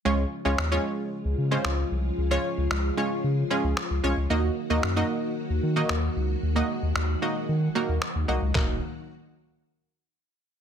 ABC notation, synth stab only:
X:1
M:4/4
L:1/16
Q:1/4=113
K:Ebm
V:1 name="Synth stab"
[A,DFd] z2 [A,DFd] z [A,DFd]3 z3 [A,DF=c]3 z2 | z [A,DFd]2 z3 [A,DFd]2 z2 [A,DFA]2 z2 [A,DFd] z | [B,EGe] z2 [B,EGe] z [B,EGe]3 z3 [B,EGe]3 z2 | z [B,EGe]2 z3 [B,EGe]2 z2 [B,EGB]2 z2 [B,EGe] z |
[B,EGe]2 z12 z2 |]